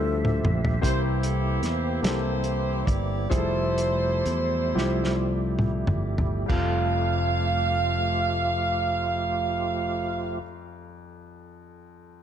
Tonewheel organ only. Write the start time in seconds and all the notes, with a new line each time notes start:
Already playing: F3 A3 G4 E5
0.82 E3 A#3 C4 G4
3.31 G3 A3 E4
6.48 F3 A3 F4 G4